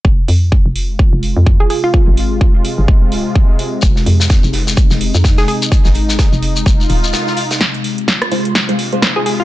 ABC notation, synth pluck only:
X:1
M:4/4
L:1/16
Q:"Swing 16ths" 1/4=127
K:Fm
V:1 name="Synth pluck"
z12 z A A F- | F3 z12 z | z12 z A A z | z16 |
z12 z A A F |]